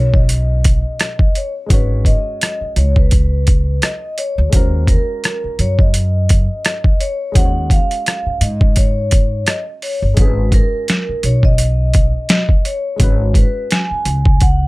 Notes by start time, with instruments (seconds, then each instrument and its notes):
Already playing: upright bass B1, grand piano G#3 B3 C#4 F#4, vibraphone C#5
0.14 vibraphone D#5, kick
0.29 closed hi-hat
0.64 kick, closed hi-hat
0.99 vibraphone D#5, cross-stick, closed hi-hat
1.19 kick
1.35 vibraphone C#5, closed hi-hat
1.66 upright bass G#1, grand piano G#3 C#4, kick, closed hi-hat
1.71 grand piano F#4 C#5, vibraphone B4
2.05 vibraphone D#5, kick, closed hi-hat
2.41 cross-stick, closed hi-hat
2.61 muted upright bass stroke
2.76 upright bass C#2, vibraphone C#5, closed hi-hat
2.96 vibraphone B4, kick
3.11 kick, closed hi-hat
3.47 kick, closed hi-hat
3.82 vibraphone D#5, cross-stick, closed hi-hat
4.18 vibraphone C#5, closed hi-hat
4.38 upright bass D2
4.50 upright bass D#2, grand piano G#3 C#4, kick, closed hi-hat
4.54 grand piano F#4 A#4, vibraphone C5
4.87 vibraphone A#4, kick, closed hi-hat
5.24 cross-stick, closed hi-hat
5.44 muted upright bass stroke
5.59 upright bass F#2, vibraphone C#5, closed hi-hat
5.79 vibraphone D#5, kick
5.94 closed hi-hat
6.29 kick, closed hi-hat
6.65 vibraphone D#5, cross-stick, closed hi-hat
6.84 kick
7.00 vibraphone C#5, closed hi-hat
7.32 upright bass D#2, grand piano G#3 C#4, vibraphone F#5, kick, closed hi-hat
7.36 grand piano F#4 C5
7.45 grand piano C#5
7.70 vibraphone F5, kick, closed hi-hat
7.91 closed hi-hat
8.06 cross-stick, closed hi-hat
8.26 muted upright bass stroke
8.41 upright bass G#2, vibraphone D#5, closed hi-hat
8.61 kick
8.76 vibraphone C#5, kick, closed hi-hat
9.11 kick, closed hi-hat
9.46 vibraphone D#5, cross-stick, closed hi-hat
9.82 vibraphone C#5, open hi-hat
10.02 upright bass G1
10.14 upright bass G#1, grand piano G#3 C#4, kick, closed hi-hat
10.19 grand piano F#4 G#4, vibraphone B4
10.52 vibraphone A#4, kick, closed hi-hat
10.88 snare, closed hi-hat
11.09 muted upright bass stroke
11.23 upright bass B1, vibraphone C#5, closed hi-hat
11.43 vibraphone D#5, kick
11.58 closed hi-hat
11.94 kick, closed hi-hat
12.29 vibraphone D#5, snare, closed hi-hat
12.49 kick
12.65 vibraphone C#5, closed hi-hat
12.96 upright bass G#1, grand piano G#3 C#4, kick, closed hi-hat
13.01 grand piano F#4 B4
13.34 vibraphone B4, kick, closed hi-hat
13.71 vibraphone G#5, snare, closed hi-hat
13.91 muted upright bass stroke
14.05 upright bass C#2, closed hi-hat
14.25 kick
14.40 vibraphone F#5, kick, closed hi-hat